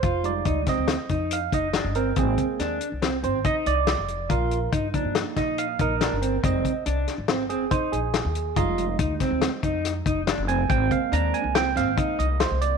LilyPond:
<<
  \new Staff \with { instrumentName = "Tine electric piano" } { \time 5/4 \key f \dorian \tempo 4 = 141 c''8 d''4 ees''4. f''8 ees''4 bes'8 | aes'4. r4 c''8 ees''8 d''4. | bes'4 r4. ees''8 f''8 bes'4. | ees''4 r4. aes'8 c''8 aes'4. |
ees''4 r2. r8 aes''8 | g''8 f''8 bes''8 aes''8 g''8 f''4 ees''8 c''8 d''8 | }
  \new Staff \with { instrumentName = "Tine electric piano" } { \time 5/4 \key f \dorian r8 <g aes ees'>4. r2. | <aes bes c'>4. r2. r8 | r4. <f bes ees'>2.~ <f bes ees'>8 | <g aes ees'>8 r1 r8 |
<g aes ees'>1~ <g aes ees'>4 | r8 <aes bes c'>1~ <aes bes c'>8 | }
  \new Staff \with { instrumentName = "Clean electric guitar" } { \time 5/4 \key f \dorian f'4 ees'8 c'4 ees'4 ees'8 d'8 c'8 | c'4 d'4 c'8 c'8 ees'4 r4 | f'4 ees'8 d'4 ees'4 ees'8 d'8 c'8 | c'4 d'4 c'8 c'8 ees'4 r4 |
f'4 ees'8 c'4 ees'4 ees'8 d'8 c'8 | c'4 d'4 c'8 c'8 ees'4 r4 | }
  \new Staff \with { instrumentName = "Upright bass" } { \clef bass \time 5/4 \key f \dorian f,,4 d,8 r16 d,8 r16 f,4 f,,8. g,,8. | aes,,8 r8 ees,8 r16 c,8. aes,,8 r8 c,8. f,,8. | bes,,4 g,8 r16 g,8 r16 bes,4 bes,,8. g,,8. | f,,8 r8 c,8 r16 aes,,8. f,,8 r8 bes,,8. ees,8. |
f,,4 d,8 r16 d,8 r16 f,4 f,,8. f,,8. | aes,,8 r8 ees,8 r16 c,8. aes,,8 r8 c,8. c,8. | }
  \new DrumStaff \with { instrumentName = "Drums" } \drummode { \time 5/4 <hh bd>8 hh8 <hh bd>8 <hh bd sn>8 <hh sn>8 <hh bd>8 hh8 <hh bd>8 <hh sn>8 hh8 | <hh bd>8 <hh bd>8 <hh sn>8 hh8 <hh sn>8 hh8 <hh bd>8 hh8 <hh sn>8 hh8 | <hh bd>8 hh8 <hh bd>8 <hh bd>8 <hh sn>8 <hh bd sn>8 hh8 <hh bd>8 <hh sn>8 hh8 | <hh bd>8 <hh bd>8 hh8 <hh sn>8 <hh sn>8 hh8 <hh bd>8 hh8 <hh sn>8 hh8 |
<hh bd>8 hh8 <hh bd>8 <hh bd sn>8 <hh sn>8 <hh bd>8 <hh sn>8 <hh bd>8 <hh sn>8 hh8 | <hh bd>8 <hh bd>8 hh8 hh8 <hh sn>8 <hh sn>8 <hh bd>8 hh8 <hh sn>8 hh8 | }
>>